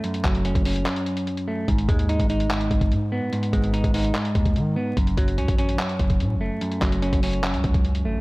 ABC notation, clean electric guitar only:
X:1
M:4/4
L:1/8
Q:1/4=146
K:F#dor
V:1 name="Clean electric guitar"
[F,,A,] F, C C F,,3 A, | G,, G, D D G,,3 B, | G,, G, D D G,,3 B, | F,, F, C C F,,3 A, |
F,, F, C C F,,3 A, |]